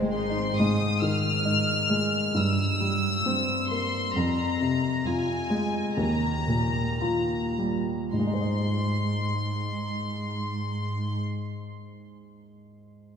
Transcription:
Already playing: double bass section G#1, cello section G#2, grand piano G#2 D#3 G#3 D#4 C5, viola section G#3, violin section C4
0.02 grand piano G#3
0.15 violin section D#4 C6
0.30 grand piano D#4
0.38 violin section C4
0.58 cello section G#2, grand piano G#2, violin section D#6
1.02 grand piano D#3, violin section F6
1.45 cello section G#2, grand piano D#4
1.90 grand piano G#3
2.35 grand piano G2, cello section G2, violin section E6
2.81 grand piano G3
3.25 cello section G2, grand piano C4
3.70 grand piano A#3, violin section C6
4.15 cello section F2, grand piano F2, violin section A#5
4.61 grand piano C3
5.05 cello section F2, grand piano F4, violin section G#5
5.50 grand piano G#3
5.97 grand piano D#2, cello section D#2, violin section A#5
6.47 grand piano A#2
7.01 cello section D#2, grand piano F4, violin section A#5
7.59 grand piano G3
8.13 grand piano G#2, cello section G#2, violin section C6
8.19 grand piano G#3
8.27 grand piano D#4
8.33 grand piano C5
8.41 grand piano D#5

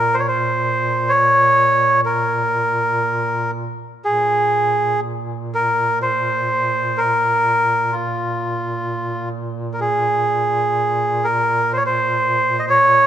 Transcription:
Already playing: duduk A#2, melodica A#4
0.14 melodica C5
0.19 melodica C#5
0.28 melodica C5
1.09 melodica C#5
2.06 melodica A#4
4.04 duduk A#2, melodica G#4
5.55 melodica A#4
6.02 melodica C5
6.98 melodica A#4
7.92 melodica F4
9.73 melodica A#4
9.80 melodica G#4
11.24 melodica A#4
11.73 melodica C5 C#5
11.86 melodica C5
12.59 melodica D#5
12.69 melodica C#5

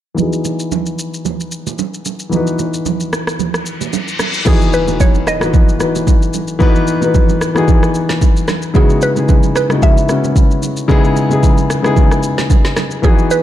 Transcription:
0.15 grand piano E3 B3 D#4, low conga, shaker
0.20 grand piano F#4 G#4
0.33 shaker
0.45 low bongo, shaker
0.60 shaker
0.72 high bongo, low conga, shaker
0.86 shaker
0.99 shaker
1.14 shaker
1.25 low bongo, low conga, shaker
1.40 shaker
1.52 shaker
1.67 low bongo, shaker
1.79 high bongo, shaker
1.94 shaker
2.05 high bongo, shaker
2.19 shaker
2.29 grand piano E3 B3 D#4, low conga, shaker
2.35 grand piano F#4 B4
2.47 shaker
2.59 low bongo, shaker
2.74 shaker
2.86 high bongo, low conga, shaker
3.00 shaker
3.13 cross-stick, shaker
3.27 cross-stick, shaker
3.39 reverse cymbal, low bongo, low conga, shaker
3.54 cross-stick, shaker
3.66 shaker
3.81 low bongo, shaker
3.93 high bongo, shaker
4.08 shaker
4.19 cross-stick, high bongo, shaker
4.34 shaker
4.45 grand piano E3 B3 D#4 F#4 G#4, synth pluck G#4, kick, crash, impact, low conga, shaker
4.61 shaker
4.73 synth pluck B4, shaker
4.87 grand piano E3 B3 D#4 F#4 B4, low bongo, shaker
5.00 synth pluck C#5, kick, high bongo, low conga, shaker
5.15 high bongo, shaker
5.27 synth pluck D#5, cross-stick, shaker
5.40 grand piano E3 B3 D#4 F#4 B4, cross-stick, shaker
5.54 kick, low bongo, low conga, shaker
5.69 shaker
5.79 grand piano E3 B3 D#4 F#4 B4, cross-stick, shaker
5.95 low bongo, shaker
6.07 kick, high bongo, shaker
6.22 shaker
6.33 high bongo, shaker
6.48 shaker
6.59 grand piano E3 B3 D#4 F#4 B4, kick, low conga, shaker
6.75 shaker
6.87 shaker
7.01 grand piano E3 B3 D#4 F#4 B4, low bongo, shaker
7.14 kick, high bongo, low conga, shaker
7.29 high bongo, shaker
7.41 cross-stick, shaker
7.54 grand piano E3 B3 D#4 F#4 G#4, cross-stick, shaker
7.68 kick, low bongo, low conga, shaker
7.83 cross-stick, shaker
7.94 shaker
8.09 snare, low bongo, shaker
8.21 kick, high bongo, shaker
8.37 shaker
8.48 cross-stick, snare, high bongo, shaker
8.62 shaker
8.74 grand piano C#3 G#3 B3 D#4 E4 F#4, synth pluck G#4, kick, low conga, shaker
8.90 shaker
9.02 synth pluck B4, shaker
9.15 grand piano C#3 G#3 B3 D#4 E4 G#4, low bongo, shaker
9.29 kick, high bongo, low conga, shaker
9.43 high bongo, shaker
9.56 synth pluck B4, cross-stick, shaker
9.69 grand piano C#3 G#3 B3 D#4 E4 F#4, cross-stick, shaker
9.82 synth pluck E5, kick, low bongo, low conga, shaker
9.97 shaker
10.07 grand piano C#3 G#3 B3 C#4 E4 F#4, cross-stick, shaker
10.24 low bongo, shaker
10.36 kick, high bongo, shaker
10.51 shaker
10.63 high bongo, shaker
10.77 shaker
10.88 grand piano C#3 G#3 B3 D#4 E4 G#4, kick, low conga, shaker
11.04 shaker
11.16 low bongo, shaker
11.29 grand piano C#3 G#3 B3 D#4 E4 G#4, low bongo, shaker
11.43 kick, high bongo, low conga, shaker
11.58 high bongo, shaker
11.70 cross-stick, shaker
11.83 grand piano C#3 G#3 B3 D#4 E4 G#4, cross-stick, shaker
11.97 kick, low bongo, low conga, shaker
12.11 cross-stick, shaker
12.23 shaker
12.38 snare, low bongo, shaker
12.50 kick, high bongo, shaker
12.65 snare, shaker
12.77 cross-stick, snare, high bongo, shaker
12.91 shaker
13.02 grand piano E3 B3 D#4 F#4 G#4, synth pluck G#4, kick, low conga, shaker
13.19 shaker
13.31 synth pluck B4, shaker

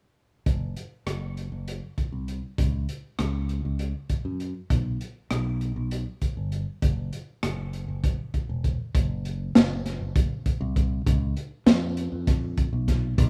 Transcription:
0.46 fingered electric bass F#1, kick, closed hi-hat
0.77 closed hi-hat
1.06 fingered electric bass F#1, cross-stick, closed hi-hat
1.37 closed hi-hat
1.52 fingered electric bass F#1
1.68 closed hi-hat
1.98 kick, closed hi-hat
2.12 fingered electric bass C2
2.28 closed hi-hat
2.58 fingered electric bass C#2, kick, closed hi-hat
2.89 closed hi-hat
3.19 fingered electric bass C#2, cross-stick, closed hi-hat
3.49 closed hi-hat
3.65 fingered electric bass C#2
3.79 closed hi-hat
4.09 kick, closed hi-hat
4.25 fingered electric bass F#2
4.40 closed hi-hat
4.70 fingered electric bass B1, kick, closed hi-hat
5.01 closed hi-hat
5.31 fingered electric bass B1, cross-stick, closed hi-hat
5.61 closed hi-hat
5.76 fingered electric bass B1
5.91 closed hi-hat
6.22 kick, closed hi-hat
6.37 fingered electric bass G1
6.52 closed hi-hat
6.82 fingered electric bass F#1, kick, closed hi-hat
7.13 closed hi-hat
7.43 fingered electric bass F#1, cross-stick, closed hi-hat
7.73 closed hi-hat
7.88 fingered electric bass F#1
8.04 kick, closed hi-hat
8.34 kick, closed hi-hat
8.49 fingered electric bass E1
8.64 kick, closed hi-hat
8.95 fingered electric bass F#1, kick, closed hi-hat
9.25 closed hi-hat
9.55 fingered electric bass F#1, snare, closed hi-hat
9.86 snare, closed hi-hat
10.00 fingered electric bass F#1
10.16 kick, closed hi-hat
10.46 kick, closed hi-hat
10.61 fingered electric bass C2
10.76 kick, closed hi-hat
11.07 fingered electric bass C#2, kick, closed hi-hat
11.37 closed hi-hat
11.66 fingered electric bass F2, snare, closed hi-hat
11.97 closed hi-hat
12.12 fingered electric bass F2
12.27 kick, snare, closed hi-hat
12.57 kick, closed hi-hat
12.73 fingered electric bass B1
12.88 kick, snare, closed hi-hat
13.18 fingered electric bass B1, kick, closed hi-hat

